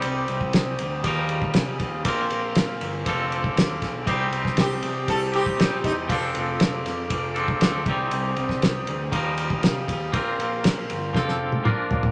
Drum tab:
RD |x-x-x-x-x-x-x-x-|x-x-x-x-x-x-x-x-|x-x-x-x-x-x-x-x-|x-x-x-x-x-x-x-x-|
SD |----o-------o---|----o-------o-o-|---oo-------o---|----o-o-----o---|
T1 |----------------|----------------|----------------|----------------|
T2 |----------------|----------------|----------------|----------------|
FT |----------------|----------------|----------------|----------------|
BD |---o----o--o--o-|o-------o--o--o-|o--o----o--o--o-|o-------o--o--o-|

RD |x-x-x-x-x-x-x-x-|x-x-x-x---------|
SD |---oo-------o---|----o---oo------|
T1 |----------------|-----------o----|
T2 |----------------|------------o---|
FT |----------------|--------------oo|
BD |---o----o--o--o-|o-------o-------|